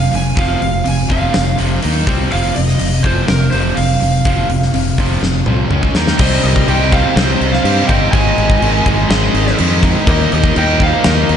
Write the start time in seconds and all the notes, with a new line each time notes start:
Already playing: F2 C3 F5
0.12 F1 F2 C3 G#5, open hi-hat
0.35 F1 F2 C3 F3 F5, kick, open hi-hat
0.60 F1 F2 C3 F5, open hi-hat
0.84 F1 F2 C3, open hi-hat
0.88 G#5
1.08 F1 F2 C3 F3 F5, kick, open hi-hat
1.34 F1 F2 C3, snare, open hi-hat
1.57 F1 F2 C3 F3, open hi-hat
1.82 D#2 D#3 A#3 D#4, open hi-hat
2.06 C2 C3 G3 C4, kick, open hi-hat
2.30 F1 F2 C3 F3 F5, open hi-hat
2.55 F1 F2 C3 D#5, open hi-hat
2.68 snare
2.79 F1 F2 C3, open hi-hat
3.03 F1 F2 C3 F3 C5, kick, open hi-hat
3.27 F1 F2 C3 A#4, snare, open hi-hat
3.51 F1 F2 C3 F3 C5, open hi-hat
3.75 F1 F2 C3 F5, open hi-hat
4.01 F1 F2 C3, open hi-hat
4.25 F1 F2 C3 F3, kick, open hi-hat
4.49 F1 F2 C3, open hi-hat
4.62 snare
4.74 F1 F2 C3, open hi-hat
4.98 F1 F2 C3 F3, kick, open hi-hat
5.22 F1 F2 C3, snare
5.46 C2 F2 C3 F3, mid tom
5.70 C#2 C#3 G#3 C#4, mid tom
5.83 kick
5.94 D#2 D#3 A#3 D#4, snare
6.07 snare
6.18 C2 C3 G3 C4 D#4 C5 D#5, kick, crash
6.43 C2 A#4 D#5, crash
6.56 kick
6.67 C2 C3 G3 C4 D#4 D#5 G5, crash
6.92 C3 G3 C4 D#4 C5 F5, kick, crash
7.15 C2 C3 G3 C4 D#4 C5 D#5, snare, crash
7.41 C2, crash
7.50 C5 F5, snare
7.64 G2 C3 G3 C4 D#4, crash
7.87 G1 C3 G3 C4 D#4 D#5 G5, kick, crash
8.10 G#1 G#2 D#3 G#3 C4 D#4 D#5 G#5, kick, crash
8.38 G#1, crash
8.50 kick
8.62 G#1 G#2 D#3 G#3 C4 D#4, crash
8.86 G#1 G#2 D#3 G#3 C4 D#4, kick, crash
9.09 G#1 G#2 D#3 G#3 C4 D#4 G#4 D#5, snare, crash
9.34 G#1, crash
9.47 snare
9.58 F2 G#2 D#3 G#3 C4 D#4, crash
9.82 G#2 D#3 G#3 C4 D#4, kick, crash
10.07 D#2 D#3 G3 A#3 D#4 A#4 D#5, kick, crash
10.32 D#2 A#4 D#5, crash
10.44 kick
10.56 D#2 D#3 G3 A#3 D#4 D#5 G5, crash
10.79 D#3 G3 A#3 D#4 C5 F5, kick, crash
11.04 D#2 D#3 G3 A#3 D#4 A#4 D#5, snare, crash
11.29 D#2, crash